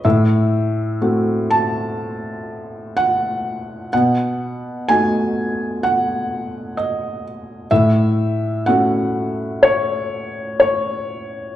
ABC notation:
X:1
M:4/4
L:1/8
Q:1/4=62
K:Alyd
V:1 name="Felt piano"
e3 a3 f2 | f2 g2 f2 d z | e2 f2 c2 c2 |]
V:2 name="Felt piano"
A,,2 [A,=CF]6 | B,,2 [A,DF]6 | A,,2 [A,CF]6 |]